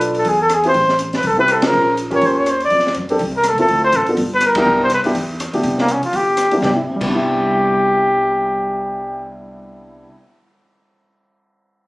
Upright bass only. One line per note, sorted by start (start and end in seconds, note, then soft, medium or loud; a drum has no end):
0.00 0.23 B1 medium
0.25 0.72 E2 medium
0.75 1.21 A1 medium
1.24 1.71 C2 medium
1.73 2.20 A#1 medium
2.22 2.68 D#2 medium
2.71 2.94 F2 medium
2.96 3.19 F#2 medium
3.20 3.50 C2 medium
3.53 3.60 D2 medium
3.61 3.69 D#2 medium
3.69 3.92 D2 medium
3.93 4.16 A1 medium
4.17 4.64 G1 medium
4.66 4.89 C2 medium
4.90 5.14 G2 medium
5.15 5.51 E2 medium
5.53 5.63 D2 medium
5.64 6.00 C2 medium
6.02 muted upright bass stroke soft
6.13 6.60 G1 medium
6.62 6.70 C2 medium
7.01 10.04 C2 medium